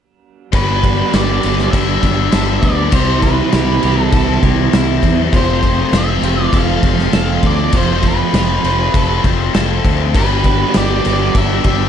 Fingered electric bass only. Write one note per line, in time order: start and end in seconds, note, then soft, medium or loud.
0.53 1.02 G1 medium
1.14 1.38 G1 medium
1.44 1.68 G1 medium
1.73 1.98 G1 medium
2.03 2.28 G1 medium
2.33 2.58 G1 medium
2.63 2.87 D2 medium
2.92 3.41 C2 loud
3.53 3.78 C2 medium
3.84 4.08 C2 medium
4.13 4.37 C2 medium
4.43 4.67 C2 medium
4.73 4.98 C2 medium
5.03 5.28 E2 medium
5.33 5.82 F1 medium
5.92 6.17 F1 medium
6.22 6.47 F1 medium
6.53 6.78 F1 medium
6.83 7.07 F1 medium
7.13 7.38 F1 medium
7.43 7.68 D2 medium
7.73 8.22 F1 loud
8.33 8.58 F1 medium
8.64 8.88 F1 medium
8.95 9.19 F1 medium
9.24 9.48 F1 medium
9.55 9.79 F1 medium
9.85 10.16 D2 medium
10.15 10.63 G1 medium
10.76 11.00 G1 medium
11.06 11.30 G1 medium
11.35 11.59 G1 medium
11.65 11.89 G1 medium